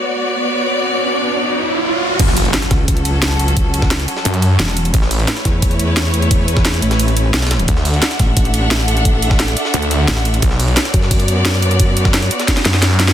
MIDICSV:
0, 0, Header, 1, 7, 480
1, 0, Start_track
1, 0, Key_signature, 3, "minor"
1, 0, Tempo, 342857
1, 1154, Time_signature, 4, 2, 24, 8
1, 18385, End_track
2, 0, Start_track
2, 0, Title_t, "String section"
2, 0, Program_c, 0, 48
2, 0, Note_on_c, 0, 59, 82
2, 0, Note_on_c, 0, 66, 77
2, 0, Note_on_c, 0, 73, 75
2, 0, Note_on_c, 0, 74, 96
2, 3035, Note_off_c, 0, 59, 0
2, 3035, Note_off_c, 0, 66, 0
2, 3035, Note_off_c, 0, 73, 0
2, 3035, Note_off_c, 0, 74, 0
2, 3073, Note_on_c, 0, 54, 87
2, 3073, Note_on_c, 0, 61, 80
2, 3073, Note_on_c, 0, 69, 97
2, 3074, Note_on_c, 0, 66, 76
2, 6875, Note_off_c, 0, 54, 0
2, 6875, Note_off_c, 0, 61, 0
2, 6875, Note_off_c, 0, 66, 0
2, 6875, Note_off_c, 0, 69, 0
2, 6912, Note_on_c, 0, 71, 82
2, 6912, Note_on_c, 0, 73, 96
2, 6913, Note_on_c, 0, 57, 88
2, 6913, Note_on_c, 0, 64, 81
2, 10714, Note_off_c, 0, 71, 0
2, 10714, Note_off_c, 0, 73, 0
2, 10715, Note_off_c, 0, 57, 0
2, 10715, Note_off_c, 0, 64, 0
2, 10753, Note_on_c, 0, 62, 85
2, 10753, Note_on_c, 0, 76, 78
2, 10753, Note_on_c, 0, 78, 97
2, 10754, Note_on_c, 0, 69, 84
2, 14555, Note_off_c, 0, 62, 0
2, 14555, Note_off_c, 0, 76, 0
2, 14555, Note_off_c, 0, 78, 0
2, 14556, Note_off_c, 0, 69, 0
2, 14595, Note_on_c, 0, 59, 90
2, 14595, Note_on_c, 0, 66, 81
2, 14595, Note_on_c, 0, 73, 80
2, 14595, Note_on_c, 0, 74, 98
2, 18385, Note_off_c, 0, 59, 0
2, 18385, Note_off_c, 0, 66, 0
2, 18385, Note_off_c, 0, 73, 0
2, 18385, Note_off_c, 0, 74, 0
2, 18385, End_track
3, 0, Start_track
3, 0, Title_t, "Detuned saw bass"
3, 0, Program_c, 1, 39
3, 3073, Note_on_c, 1, 30, 95
3, 3534, Note_off_c, 1, 30, 0
3, 5954, Note_on_c, 1, 42, 98
3, 6414, Note_off_c, 1, 42, 0
3, 6913, Note_on_c, 1, 33, 96
3, 7374, Note_off_c, 1, 33, 0
3, 10753, Note_on_c, 1, 38, 97
3, 11214, Note_off_c, 1, 38, 0
3, 13633, Note_on_c, 1, 38, 98
3, 14094, Note_off_c, 1, 38, 0
3, 14593, Note_on_c, 1, 35, 97
3, 15054, Note_off_c, 1, 35, 0
3, 17713, Note_on_c, 1, 42, 103
3, 18385, Note_off_c, 1, 42, 0
3, 18385, End_track
4, 0, Start_track
4, 0, Title_t, "Wobble bass"
4, 0, Program_c, 2, 39
4, 3793, Note_on_c, 2, 37, 98
4, 5694, Note_off_c, 2, 37, 0
4, 6432, Note_on_c, 2, 28, 97
4, 6893, Note_off_c, 2, 28, 0
4, 7633, Note_on_c, 2, 40, 96
4, 9534, Note_off_c, 2, 40, 0
4, 9553, Note_on_c, 2, 33, 94
4, 10254, Note_off_c, 2, 33, 0
4, 10273, Note_on_c, 2, 35, 102
4, 10734, Note_off_c, 2, 35, 0
4, 11473, Note_on_c, 2, 33, 92
4, 13374, Note_off_c, 2, 33, 0
4, 14113, Note_on_c, 2, 33, 104
4, 14574, Note_off_c, 2, 33, 0
4, 15314, Note_on_c, 2, 42, 99
4, 17214, Note_off_c, 2, 42, 0
4, 18385, End_track
5, 0, Start_track
5, 0, Title_t, "Impact"
5, 0, Program_c, 3, 103
5, 3073, Note_on_c, 3, 60, 80
5, 4993, Note_off_c, 3, 60, 0
5, 18385, End_track
6, 0, Start_track
6, 0, Title_t, "Riser"
6, 0, Program_c, 4, 103
6, 0, Note_on_c, 4, 60, 74
6, 3073, Note_off_c, 4, 60, 0
6, 18385, End_track
7, 0, Start_track
7, 0, Title_t, "Drums"
7, 3072, Note_on_c, 9, 42, 101
7, 3072, Note_on_c, 9, 49, 110
7, 3072, Note_on_c, 9, 51, 92
7, 3073, Note_on_c, 9, 36, 115
7, 3193, Note_on_c, 9, 38, 42
7, 3212, Note_off_c, 9, 42, 0
7, 3212, Note_off_c, 9, 49, 0
7, 3212, Note_off_c, 9, 51, 0
7, 3213, Note_off_c, 9, 36, 0
7, 3312, Note_on_c, 9, 46, 82
7, 3313, Note_on_c, 9, 42, 69
7, 3333, Note_off_c, 9, 38, 0
7, 3432, Note_on_c, 9, 51, 45
7, 3452, Note_off_c, 9, 46, 0
7, 3453, Note_off_c, 9, 42, 0
7, 3552, Note_off_c, 9, 51, 0
7, 3552, Note_on_c, 9, 38, 119
7, 3552, Note_on_c, 9, 51, 90
7, 3553, Note_off_c, 9, 38, 0
7, 3553, Note_on_c, 9, 38, 118
7, 3553, Note_on_c, 9, 42, 100
7, 3672, Note_off_c, 9, 38, 0
7, 3672, Note_off_c, 9, 42, 0
7, 3672, Note_on_c, 9, 38, 51
7, 3672, Note_on_c, 9, 42, 37
7, 3692, Note_off_c, 9, 51, 0
7, 3791, Note_off_c, 9, 38, 0
7, 3791, Note_on_c, 9, 38, 48
7, 3791, Note_on_c, 9, 51, 71
7, 3792, Note_off_c, 9, 42, 0
7, 3792, Note_on_c, 9, 42, 73
7, 3793, Note_on_c, 9, 36, 109
7, 3931, Note_off_c, 9, 38, 0
7, 3931, Note_off_c, 9, 51, 0
7, 3932, Note_off_c, 9, 42, 0
7, 3933, Note_off_c, 9, 36, 0
7, 4032, Note_on_c, 9, 42, 104
7, 4032, Note_on_c, 9, 51, 91
7, 4034, Note_on_c, 9, 36, 110
7, 4153, Note_off_c, 9, 42, 0
7, 4153, Note_on_c, 9, 42, 39
7, 4172, Note_off_c, 9, 51, 0
7, 4174, Note_off_c, 9, 36, 0
7, 4272, Note_on_c, 9, 51, 72
7, 4273, Note_off_c, 9, 42, 0
7, 4273, Note_on_c, 9, 42, 66
7, 4412, Note_off_c, 9, 51, 0
7, 4413, Note_off_c, 9, 42, 0
7, 4512, Note_on_c, 9, 38, 125
7, 4512, Note_on_c, 9, 42, 99
7, 4512, Note_on_c, 9, 51, 91
7, 4652, Note_off_c, 9, 38, 0
7, 4652, Note_off_c, 9, 42, 0
7, 4652, Note_off_c, 9, 51, 0
7, 4753, Note_on_c, 9, 42, 70
7, 4753, Note_on_c, 9, 51, 72
7, 4873, Note_off_c, 9, 42, 0
7, 4873, Note_on_c, 9, 42, 39
7, 4893, Note_off_c, 9, 51, 0
7, 4992, Note_on_c, 9, 51, 90
7, 4993, Note_off_c, 9, 42, 0
7, 4993, Note_on_c, 9, 36, 127
7, 4993, Note_on_c, 9, 42, 107
7, 5132, Note_off_c, 9, 51, 0
7, 5133, Note_off_c, 9, 36, 0
7, 5133, Note_off_c, 9, 42, 0
7, 5232, Note_on_c, 9, 51, 70
7, 5234, Note_on_c, 9, 42, 66
7, 5352, Note_on_c, 9, 38, 57
7, 5353, Note_on_c, 9, 36, 111
7, 5372, Note_off_c, 9, 51, 0
7, 5374, Note_off_c, 9, 42, 0
7, 5472, Note_off_c, 9, 38, 0
7, 5472, Note_on_c, 9, 38, 123
7, 5472, Note_on_c, 9, 51, 91
7, 5473, Note_off_c, 9, 38, 0
7, 5473, Note_on_c, 9, 38, 125
7, 5473, Note_on_c, 9, 42, 100
7, 5493, Note_off_c, 9, 36, 0
7, 5593, Note_off_c, 9, 42, 0
7, 5593, Note_on_c, 9, 42, 38
7, 5612, Note_off_c, 9, 51, 0
7, 5613, Note_off_c, 9, 38, 0
7, 5712, Note_on_c, 9, 51, 73
7, 5713, Note_off_c, 9, 42, 0
7, 5713, Note_on_c, 9, 42, 69
7, 5832, Note_on_c, 9, 38, 38
7, 5852, Note_off_c, 9, 51, 0
7, 5853, Note_off_c, 9, 42, 0
7, 5952, Note_on_c, 9, 51, 90
7, 5953, Note_on_c, 9, 42, 100
7, 5972, Note_off_c, 9, 38, 0
7, 6073, Note_off_c, 9, 42, 0
7, 6073, Note_on_c, 9, 42, 39
7, 6092, Note_off_c, 9, 51, 0
7, 6192, Note_on_c, 9, 51, 66
7, 6194, Note_off_c, 9, 42, 0
7, 6194, Note_on_c, 9, 42, 69
7, 6332, Note_off_c, 9, 51, 0
7, 6334, Note_off_c, 9, 42, 0
7, 6432, Note_on_c, 9, 38, 124
7, 6432, Note_on_c, 9, 51, 89
7, 6433, Note_off_c, 9, 38, 0
7, 6433, Note_on_c, 9, 38, 125
7, 6433, Note_on_c, 9, 42, 100
7, 6552, Note_off_c, 9, 38, 0
7, 6552, Note_on_c, 9, 38, 58
7, 6572, Note_off_c, 9, 51, 0
7, 6573, Note_off_c, 9, 42, 0
7, 6672, Note_on_c, 9, 51, 73
7, 6673, Note_on_c, 9, 42, 65
7, 6692, Note_off_c, 9, 38, 0
7, 6792, Note_off_c, 9, 42, 0
7, 6792, Note_on_c, 9, 42, 40
7, 6793, Note_off_c, 9, 51, 0
7, 6793, Note_on_c, 9, 51, 44
7, 6913, Note_off_c, 9, 42, 0
7, 6913, Note_off_c, 9, 51, 0
7, 6913, Note_on_c, 9, 36, 127
7, 6913, Note_on_c, 9, 42, 97
7, 6913, Note_on_c, 9, 51, 91
7, 7033, Note_on_c, 9, 38, 41
7, 7053, Note_off_c, 9, 36, 0
7, 7053, Note_off_c, 9, 42, 0
7, 7053, Note_off_c, 9, 51, 0
7, 7153, Note_on_c, 9, 42, 70
7, 7154, Note_on_c, 9, 46, 84
7, 7173, Note_off_c, 9, 38, 0
7, 7273, Note_on_c, 9, 51, 43
7, 7293, Note_off_c, 9, 42, 0
7, 7294, Note_off_c, 9, 46, 0
7, 7393, Note_off_c, 9, 51, 0
7, 7393, Note_on_c, 9, 38, 118
7, 7393, Note_on_c, 9, 42, 101
7, 7393, Note_on_c, 9, 51, 90
7, 7513, Note_off_c, 9, 38, 0
7, 7513, Note_off_c, 9, 42, 0
7, 7513, Note_on_c, 9, 38, 54
7, 7513, Note_on_c, 9, 42, 37
7, 7533, Note_off_c, 9, 51, 0
7, 7633, Note_off_c, 9, 38, 0
7, 7633, Note_off_c, 9, 42, 0
7, 7633, Note_on_c, 9, 38, 49
7, 7633, Note_on_c, 9, 42, 70
7, 7633, Note_on_c, 9, 51, 72
7, 7634, Note_on_c, 9, 36, 106
7, 7773, Note_off_c, 9, 38, 0
7, 7773, Note_off_c, 9, 42, 0
7, 7773, Note_off_c, 9, 51, 0
7, 7774, Note_off_c, 9, 36, 0
7, 7873, Note_on_c, 9, 42, 98
7, 7873, Note_on_c, 9, 51, 96
7, 7874, Note_on_c, 9, 36, 114
7, 7993, Note_off_c, 9, 42, 0
7, 7993, Note_on_c, 9, 42, 38
7, 8013, Note_off_c, 9, 51, 0
7, 8014, Note_off_c, 9, 36, 0
7, 8113, Note_off_c, 9, 42, 0
7, 8113, Note_on_c, 9, 42, 70
7, 8113, Note_on_c, 9, 51, 71
7, 8253, Note_off_c, 9, 42, 0
7, 8253, Note_off_c, 9, 51, 0
7, 8352, Note_on_c, 9, 38, 124
7, 8352, Note_on_c, 9, 51, 92
7, 8353, Note_off_c, 9, 38, 0
7, 8353, Note_on_c, 9, 38, 127
7, 8353, Note_on_c, 9, 42, 95
7, 8492, Note_off_c, 9, 51, 0
7, 8493, Note_off_c, 9, 38, 0
7, 8493, Note_off_c, 9, 42, 0
7, 8592, Note_on_c, 9, 51, 72
7, 8593, Note_on_c, 9, 42, 64
7, 8713, Note_off_c, 9, 42, 0
7, 8713, Note_on_c, 9, 42, 37
7, 8732, Note_off_c, 9, 51, 0
7, 8832, Note_on_c, 9, 51, 93
7, 8833, Note_off_c, 9, 42, 0
7, 8833, Note_on_c, 9, 42, 93
7, 8834, Note_on_c, 9, 36, 124
7, 8972, Note_off_c, 9, 51, 0
7, 8973, Note_off_c, 9, 42, 0
7, 8974, Note_off_c, 9, 36, 0
7, 9072, Note_on_c, 9, 51, 69
7, 9074, Note_on_c, 9, 42, 65
7, 9192, Note_on_c, 9, 38, 58
7, 9193, Note_on_c, 9, 36, 114
7, 9212, Note_off_c, 9, 51, 0
7, 9214, Note_off_c, 9, 42, 0
7, 9312, Note_off_c, 9, 38, 0
7, 9312, Note_on_c, 9, 38, 119
7, 9312, Note_on_c, 9, 51, 89
7, 9314, Note_off_c, 9, 38, 0
7, 9314, Note_on_c, 9, 38, 126
7, 9314, Note_on_c, 9, 42, 94
7, 9333, Note_off_c, 9, 36, 0
7, 9434, Note_off_c, 9, 42, 0
7, 9434, Note_on_c, 9, 42, 35
7, 9452, Note_off_c, 9, 51, 0
7, 9454, Note_off_c, 9, 38, 0
7, 9553, Note_on_c, 9, 51, 73
7, 9554, Note_off_c, 9, 42, 0
7, 9554, Note_on_c, 9, 42, 65
7, 9673, Note_on_c, 9, 38, 40
7, 9674, Note_off_c, 9, 42, 0
7, 9674, Note_on_c, 9, 42, 37
7, 9693, Note_off_c, 9, 51, 0
7, 9792, Note_on_c, 9, 51, 93
7, 9793, Note_off_c, 9, 42, 0
7, 9793, Note_on_c, 9, 42, 92
7, 9813, Note_off_c, 9, 38, 0
7, 9913, Note_off_c, 9, 42, 0
7, 9913, Note_on_c, 9, 42, 36
7, 9932, Note_off_c, 9, 51, 0
7, 10032, Note_on_c, 9, 51, 69
7, 10033, Note_off_c, 9, 42, 0
7, 10033, Note_on_c, 9, 42, 64
7, 10172, Note_off_c, 9, 51, 0
7, 10173, Note_off_c, 9, 42, 0
7, 10273, Note_on_c, 9, 38, 126
7, 10273, Note_on_c, 9, 42, 97
7, 10273, Note_on_c, 9, 51, 82
7, 10393, Note_off_c, 9, 38, 0
7, 10393, Note_off_c, 9, 51, 0
7, 10393, Note_on_c, 9, 38, 91
7, 10393, Note_on_c, 9, 51, 69
7, 10413, Note_off_c, 9, 42, 0
7, 10453, Note_off_c, 9, 38, 0
7, 10453, Note_off_c, 9, 51, 0
7, 10453, Note_on_c, 9, 38, 91
7, 10453, Note_on_c, 9, 51, 68
7, 10512, Note_off_c, 9, 38, 0
7, 10512, Note_off_c, 9, 51, 0
7, 10512, Note_on_c, 9, 38, 110
7, 10512, Note_on_c, 9, 51, 84
7, 10513, Note_on_c, 9, 42, 63
7, 10632, Note_off_c, 9, 51, 0
7, 10632, Note_on_c, 9, 51, 45
7, 10633, Note_off_c, 9, 42, 0
7, 10633, Note_on_c, 9, 42, 38
7, 10652, Note_off_c, 9, 38, 0
7, 10753, Note_off_c, 9, 42, 0
7, 10753, Note_off_c, 9, 51, 0
7, 10753, Note_on_c, 9, 36, 123
7, 10753, Note_on_c, 9, 42, 92
7, 10753, Note_on_c, 9, 51, 89
7, 10873, Note_on_c, 9, 38, 40
7, 10893, Note_off_c, 9, 36, 0
7, 10893, Note_off_c, 9, 42, 0
7, 10893, Note_off_c, 9, 51, 0
7, 10992, Note_on_c, 9, 46, 83
7, 10993, Note_on_c, 9, 42, 61
7, 11013, Note_off_c, 9, 38, 0
7, 11112, Note_on_c, 9, 51, 45
7, 11132, Note_off_c, 9, 46, 0
7, 11133, Note_off_c, 9, 42, 0
7, 11232, Note_off_c, 9, 51, 0
7, 11232, Note_on_c, 9, 38, 119
7, 11232, Note_on_c, 9, 51, 89
7, 11233, Note_off_c, 9, 38, 0
7, 11233, Note_on_c, 9, 38, 119
7, 11233, Note_on_c, 9, 42, 92
7, 11353, Note_off_c, 9, 38, 0
7, 11353, Note_off_c, 9, 42, 0
7, 11353, Note_on_c, 9, 38, 52
7, 11353, Note_on_c, 9, 42, 34
7, 11372, Note_off_c, 9, 51, 0
7, 11473, Note_off_c, 9, 38, 0
7, 11473, Note_off_c, 9, 42, 0
7, 11473, Note_on_c, 9, 36, 105
7, 11473, Note_on_c, 9, 38, 47
7, 11473, Note_on_c, 9, 42, 62
7, 11473, Note_on_c, 9, 51, 72
7, 11613, Note_off_c, 9, 36, 0
7, 11613, Note_off_c, 9, 38, 0
7, 11613, Note_off_c, 9, 42, 0
7, 11613, Note_off_c, 9, 51, 0
7, 11713, Note_on_c, 9, 36, 110
7, 11713, Note_on_c, 9, 42, 90
7, 11713, Note_on_c, 9, 51, 92
7, 11833, Note_off_c, 9, 42, 0
7, 11833, Note_on_c, 9, 42, 35
7, 11853, Note_off_c, 9, 36, 0
7, 11853, Note_off_c, 9, 51, 0
7, 11952, Note_on_c, 9, 51, 68
7, 11953, Note_off_c, 9, 42, 0
7, 11953, Note_on_c, 9, 42, 61
7, 12092, Note_off_c, 9, 51, 0
7, 12093, Note_off_c, 9, 42, 0
7, 12192, Note_on_c, 9, 38, 118
7, 12192, Note_on_c, 9, 51, 90
7, 12193, Note_off_c, 9, 38, 0
7, 12193, Note_on_c, 9, 38, 123
7, 12193, Note_on_c, 9, 42, 90
7, 12332, Note_off_c, 9, 51, 0
7, 12333, Note_off_c, 9, 38, 0
7, 12333, Note_off_c, 9, 42, 0
7, 12433, Note_on_c, 9, 42, 60
7, 12433, Note_on_c, 9, 51, 72
7, 12554, Note_off_c, 9, 42, 0
7, 12554, Note_on_c, 9, 42, 35
7, 12573, Note_off_c, 9, 51, 0
7, 12673, Note_off_c, 9, 42, 0
7, 12673, Note_on_c, 9, 36, 121
7, 12673, Note_on_c, 9, 42, 90
7, 12673, Note_on_c, 9, 51, 92
7, 12813, Note_off_c, 9, 36, 0
7, 12813, Note_off_c, 9, 42, 0
7, 12813, Note_off_c, 9, 51, 0
7, 12913, Note_on_c, 9, 51, 70
7, 12914, Note_on_c, 9, 42, 63
7, 13033, Note_on_c, 9, 36, 107
7, 13033, Note_on_c, 9, 38, 57
7, 13053, Note_off_c, 9, 51, 0
7, 13054, Note_off_c, 9, 42, 0
7, 13152, Note_off_c, 9, 38, 0
7, 13152, Note_on_c, 9, 38, 125
7, 13152, Note_on_c, 9, 51, 93
7, 13154, Note_off_c, 9, 38, 0
7, 13154, Note_on_c, 9, 38, 113
7, 13154, Note_on_c, 9, 42, 92
7, 13173, Note_off_c, 9, 36, 0
7, 13274, Note_off_c, 9, 42, 0
7, 13274, Note_on_c, 9, 42, 35
7, 13292, Note_off_c, 9, 51, 0
7, 13294, Note_off_c, 9, 38, 0
7, 13392, Note_on_c, 9, 51, 69
7, 13395, Note_off_c, 9, 42, 0
7, 13395, Note_on_c, 9, 42, 65
7, 13512, Note_on_c, 9, 38, 40
7, 13532, Note_off_c, 9, 51, 0
7, 13535, Note_off_c, 9, 42, 0
7, 13632, Note_on_c, 9, 51, 94
7, 13634, Note_on_c, 9, 42, 91
7, 13652, Note_off_c, 9, 38, 0
7, 13754, Note_off_c, 9, 42, 0
7, 13754, Note_on_c, 9, 42, 34
7, 13772, Note_off_c, 9, 51, 0
7, 13873, Note_on_c, 9, 51, 68
7, 13874, Note_off_c, 9, 42, 0
7, 13874, Note_on_c, 9, 42, 63
7, 14013, Note_off_c, 9, 51, 0
7, 14014, Note_off_c, 9, 42, 0
7, 14113, Note_on_c, 9, 38, 123
7, 14113, Note_on_c, 9, 51, 86
7, 14114, Note_off_c, 9, 38, 0
7, 14114, Note_on_c, 9, 38, 113
7, 14114, Note_on_c, 9, 42, 88
7, 14233, Note_off_c, 9, 38, 0
7, 14233, Note_on_c, 9, 38, 60
7, 14253, Note_off_c, 9, 51, 0
7, 14254, Note_off_c, 9, 42, 0
7, 14353, Note_on_c, 9, 51, 71
7, 14354, Note_on_c, 9, 42, 60
7, 14373, Note_off_c, 9, 38, 0
7, 14473, Note_off_c, 9, 51, 0
7, 14473, Note_on_c, 9, 51, 47
7, 14474, Note_off_c, 9, 42, 0
7, 14474, Note_on_c, 9, 42, 36
7, 14592, Note_off_c, 9, 51, 0
7, 14592, Note_on_c, 9, 51, 91
7, 14594, Note_off_c, 9, 42, 0
7, 14594, Note_on_c, 9, 36, 112
7, 14594, Note_on_c, 9, 42, 95
7, 14713, Note_on_c, 9, 38, 41
7, 14732, Note_off_c, 9, 51, 0
7, 14734, Note_off_c, 9, 36, 0
7, 14734, Note_off_c, 9, 42, 0
7, 14833, Note_on_c, 9, 46, 85
7, 14834, Note_on_c, 9, 42, 63
7, 14853, Note_off_c, 9, 38, 0
7, 14954, Note_on_c, 9, 51, 43
7, 14973, Note_off_c, 9, 46, 0
7, 14974, Note_off_c, 9, 42, 0
7, 15073, Note_off_c, 9, 51, 0
7, 15073, Note_on_c, 9, 38, 122
7, 15073, Note_on_c, 9, 51, 93
7, 15074, Note_off_c, 9, 38, 0
7, 15074, Note_on_c, 9, 38, 115
7, 15074, Note_on_c, 9, 42, 95
7, 15194, Note_off_c, 9, 38, 0
7, 15194, Note_off_c, 9, 42, 0
7, 15194, Note_on_c, 9, 38, 51
7, 15194, Note_on_c, 9, 42, 36
7, 15213, Note_off_c, 9, 51, 0
7, 15313, Note_off_c, 9, 42, 0
7, 15313, Note_on_c, 9, 42, 66
7, 15314, Note_on_c, 9, 36, 103
7, 15314, Note_on_c, 9, 51, 82
7, 15334, Note_off_c, 9, 38, 0
7, 15434, Note_on_c, 9, 38, 37
7, 15453, Note_off_c, 9, 42, 0
7, 15454, Note_off_c, 9, 36, 0
7, 15454, Note_off_c, 9, 51, 0
7, 15554, Note_on_c, 9, 36, 99
7, 15554, Note_on_c, 9, 42, 95
7, 15554, Note_on_c, 9, 46, 78
7, 15574, Note_off_c, 9, 38, 0
7, 15674, Note_off_c, 9, 42, 0
7, 15674, Note_on_c, 9, 42, 37
7, 15675, Note_on_c, 9, 51, 38
7, 15694, Note_off_c, 9, 36, 0
7, 15694, Note_off_c, 9, 46, 0
7, 15794, Note_off_c, 9, 42, 0
7, 15794, Note_on_c, 9, 42, 62
7, 15795, Note_off_c, 9, 51, 0
7, 15795, Note_on_c, 9, 51, 71
7, 15934, Note_off_c, 9, 42, 0
7, 15935, Note_off_c, 9, 51, 0
7, 16034, Note_on_c, 9, 38, 117
7, 16034, Note_on_c, 9, 42, 93
7, 16034, Note_on_c, 9, 51, 92
7, 16174, Note_off_c, 9, 38, 0
7, 16174, Note_off_c, 9, 42, 0
7, 16174, Note_off_c, 9, 51, 0
7, 16273, Note_on_c, 9, 51, 71
7, 16274, Note_on_c, 9, 42, 60
7, 16394, Note_off_c, 9, 42, 0
7, 16394, Note_on_c, 9, 42, 36
7, 16413, Note_off_c, 9, 51, 0
7, 16513, Note_on_c, 9, 51, 93
7, 16514, Note_off_c, 9, 42, 0
7, 16514, Note_on_c, 9, 36, 119
7, 16514, Note_on_c, 9, 42, 101
7, 16653, Note_off_c, 9, 51, 0
7, 16654, Note_off_c, 9, 36, 0
7, 16654, Note_off_c, 9, 42, 0
7, 16753, Note_on_c, 9, 51, 72
7, 16754, Note_on_c, 9, 42, 66
7, 16873, Note_on_c, 9, 38, 59
7, 16874, Note_on_c, 9, 36, 101
7, 16893, Note_off_c, 9, 51, 0
7, 16894, Note_off_c, 9, 42, 0
7, 16993, Note_off_c, 9, 38, 0
7, 16993, Note_on_c, 9, 38, 121
7, 16993, Note_on_c, 9, 51, 95
7, 16994, Note_off_c, 9, 38, 0
7, 16994, Note_on_c, 9, 38, 119
7, 16994, Note_on_c, 9, 42, 95
7, 17014, Note_off_c, 9, 36, 0
7, 17114, Note_off_c, 9, 42, 0
7, 17114, Note_on_c, 9, 42, 36
7, 17133, Note_off_c, 9, 51, 0
7, 17134, Note_off_c, 9, 38, 0
7, 17233, Note_on_c, 9, 51, 75
7, 17234, Note_off_c, 9, 42, 0
7, 17234, Note_on_c, 9, 42, 70
7, 17353, Note_off_c, 9, 42, 0
7, 17353, Note_on_c, 9, 38, 42
7, 17353, Note_on_c, 9, 42, 38
7, 17373, Note_off_c, 9, 51, 0
7, 17472, Note_on_c, 9, 51, 94
7, 17473, Note_off_c, 9, 38, 0
7, 17473, Note_off_c, 9, 42, 0
7, 17473, Note_on_c, 9, 38, 64
7, 17473, Note_on_c, 9, 42, 99
7, 17474, Note_on_c, 9, 36, 63
7, 17594, Note_off_c, 9, 38, 0
7, 17594, Note_off_c, 9, 42, 0
7, 17594, Note_on_c, 9, 38, 58
7, 17594, Note_on_c, 9, 42, 38
7, 17612, Note_off_c, 9, 51, 0
7, 17614, Note_off_c, 9, 36, 0
7, 17713, Note_off_c, 9, 38, 0
7, 17713, Note_off_c, 9, 42, 0
7, 17713, Note_on_c, 9, 38, 73
7, 17713, Note_on_c, 9, 42, 66
7, 17713, Note_on_c, 9, 51, 69
7, 17833, Note_off_c, 9, 38, 0
7, 17833, Note_on_c, 9, 38, 66
7, 17853, Note_off_c, 9, 42, 0
7, 17853, Note_off_c, 9, 51, 0
7, 17952, Note_off_c, 9, 38, 0
7, 17952, Note_on_c, 9, 38, 108
7, 17952, Note_on_c, 9, 51, 77
7, 17953, Note_off_c, 9, 38, 0
7, 17953, Note_on_c, 9, 38, 84
7, 17953, Note_on_c, 9, 42, 98
7, 18073, Note_off_c, 9, 38, 0
7, 18073, Note_on_c, 9, 38, 47
7, 18092, Note_off_c, 9, 51, 0
7, 18093, Note_off_c, 9, 42, 0
7, 18193, Note_off_c, 9, 38, 0
7, 18193, Note_on_c, 9, 38, 96
7, 18193, Note_on_c, 9, 42, 64
7, 18193, Note_on_c, 9, 51, 66
7, 18313, Note_off_c, 9, 38, 0
7, 18313, Note_off_c, 9, 42, 0
7, 18313, Note_on_c, 9, 38, 91
7, 18313, Note_on_c, 9, 42, 38
7, 18333, Note_off_c, 9, 51, 0
7, 18385, Note_off_c, 9, 38, 0
7, 18385, Note_off_c, 9, 42, 0
7, 18385, End_track
0, 0, End_of_file